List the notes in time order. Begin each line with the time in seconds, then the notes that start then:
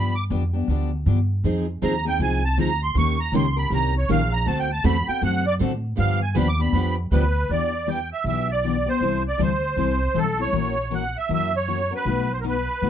Already playing: G2 D3 F3 B3 D4 G4 B5
0.15 D6
0.30 F2 D3 F3 B3 D4 G4
0.53 B3 D4 G4
0.68 D2 D3 F3 B3 D4 G4
1.06 G2 D3 F3 B3 D4 G4
1.44 F2 F3 C4 D#4 G#4
1.82 D#2 F3 C4 D#4 G#4 A#5
2.05 C4 D#4 G#4 G5
2.19 C2 F3 C4 D#4 G#4 G#5
2.45 A5
2.57 D2 F3 C4 D#4 G#4 A#5
2.83 C6
2.94 D#2 D#3 A#3 C#4 G4 A#4 C#6
3.20 A#5
3.32 C#2 D#3 A#3 C#4 G4 A#4
3.36 C6
3.56 C#4 G4 A#4 B5
3.70 C2 D#3 A#3 C#4 G4 A#4 A#5
3.98 C#5
4.09 A#1 D#3 A#3 C#4 G4 A#4 F5
4.33 A#5
4.46 D2 D3 A3 C4 F#4 A4 A5
4.59 G5
4.73 A5
4.84 E2 D3 A3 C4 F#4 A4 B5
5.07 C4 F#4 A4 G5, muted upright bass stroke
5.22 F#2 D3 A3 C4 F#4 A4 F#5
5.47 D5
5.60 A2 D3 A3 C4 F#4 A4
5.97 G2 D3 F3 B3 D4 G4 F5
6.23 G#5
6.36 D#2 D3 F3 B3 D4 G4 B5
6.48 D6
6.59 B3 D4 G4 B5
6.72 F2 D3 F3 B3 D4 G4
7.11 D2 D3 F3 B3 D4 G4 B4
7.49 E2 E3 B3 D4 G4 D5
7.86 E3 B3 D4 G4 G5
8.13 E5
8.24 B1 E3 B3 D4 G4 E5
8.51 D5
8.64 E3 B3 D4 G4
8.86 B3 D4 G4 C5
9.01 C2 C3 E3 G3 C4 E4 A4
9.28 D5
9.38 D2 C3 E3 G3 C4 E4 A4
9.43 C5
9.76 C2 C3 E3 G3 C4 E4 A4
10.14 B1 C3 E3 G3 C4 E4 A4
10.38 G3 C4 E4 A4 C#5
10.52 A#1 E3 A#3 C#4 F#4 A#4
10.90 E3 A#3 C#4 F#4 A#4
10.95 F#5
11.18 E5
11.29 F#2 E3 A#3 C#4 F#4 A#4
11.34 E5
11.56 C#5
11.67 E3 A#3 C#4 F#4 A#4
11.91 C#4 F#4 A#4
11.95 B4
12.05 B1 B2 F#3 A3 D#4 F#4
12.33 C5
12.41 B2 F#3 A3 D#4 F#4 A#4
12.48 B4
12.82 F#1 B2 F#3 A3 D#4 F#4